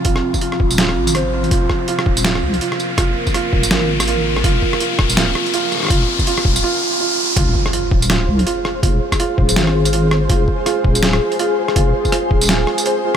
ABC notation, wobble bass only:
X:1
M:4/4
L:1/8
Q:"Swing 16ths" 1/4=164
K:Fm
V:1 name="Wobble bass" clef=bass
F,,, z2 E,,,2 A,,,3 | F,,, z2 E,,,2 C,, z2 | F,,, z2 E,,, A,,,4 | F,,, z2 E,,,2 z3 |
F,,, z2 E,,, z4 | F,,, z2 E,,,2 C,, z2 | F,,, z2 E,,, A,,,4 | F,,, z2 E,,,2 z3 |
F,,, z2 E,,,2 z3 |]